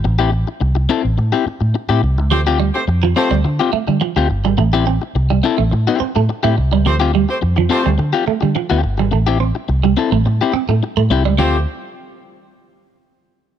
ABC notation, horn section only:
X:1
M:4/4
L:1/16
Q:1/4=106
K:Dm
V:1 name="Horn section"
z16 | [A,CGc] z2 [A,CGc] z2 [A,CGc]2 z8 | z16 | [A,CGc] z2 [A,CGc] z2 [A,CGc]2 z8 |
z16 | [A,CGc]2 z12 z2 |]